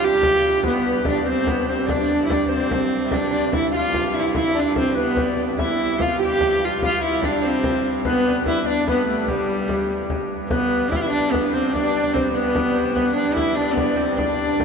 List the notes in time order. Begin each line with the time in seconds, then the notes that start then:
Already playing: G2
0.00 G4 G5
0.04 G4
0.23 frame drum
0.45 frame drum
0.63 G2 B3 B4, frame drum
0.67 B3
1.05 D4 D5, frame drum
1.09 D4
1.26 C4 C5, frame drum
1.47 B3, frame drum
1.68 C4 C5
1.87 D4 D5, frame drum
1.91 D4
2.25 E4
2.29 D4 D5, frame drum
2.33 D4
2.49 C4 C5, frame drum
2.53 C4
2.71 frame drum
3.06 E5
3.10 D4 D5, frame drum
3.14 D4
3.31 D4 D5
3.52 E4 E5, frame drum
3.70 F4 F5, frame drum
3.76 F4
3.93 F4, frame drum
4.14 E4 E5
4.18 E4
4.34 E4 E5, frame drum
4.49 E4
4.55 D4 D5
4.60 D4
4.76 C4 C5, frame drum
4.95 B3 B4
5.01 B3
5.17 frame drum
5.22 D5
5.57 G2 E4 E5, frame drum
5.61 E4
5.98 F4 F5, frame drum
6.19 G4 G5, frame drum
6.24 G4
6.40 G4 G5, frame drum
6.60 F4
6.65 F4
6.79 F4, frame drum
6.83 F4 F5
7.00 E4 E5
7.06 E4
7.21 D4 D5, frame drum
7.42 C4 C5, frame drum
7.64 frame drum
8.05 B3 B4, frame drum
8.28 D4
8.46 E4 E5, frame drum
8.66 D4 D5, frame drum
8.87 B3 B4, frame drum
9.09 A3
9.28 G3 G4, frame drum
9.69 frame drum
10.10 frame drum
10.50 G2 B3 B4, frame drum
10.91 E4 E5, frame drum
10.96 F4 E5
11.01 E4
11.10 D4 D5, frame drum
11.31 B3 B4, frame drum
11.53 C4 C5
11.73 D4 D5, frame drum
11.89 D4
12.03 D4
12.14 C4 C5, frame drum
12.33 B3 B4, frame drum
12.55 frame drum
12.75 C4 C5
12.95 B3 B4, frame drum
13.15 D4 D5
13.34 E4 E5, frame drum
13.55 D4 D5, frame drum
13.74 B3, frame drum
13.96 C4
14.17 D4 D5, frame drum
14.60 frame drum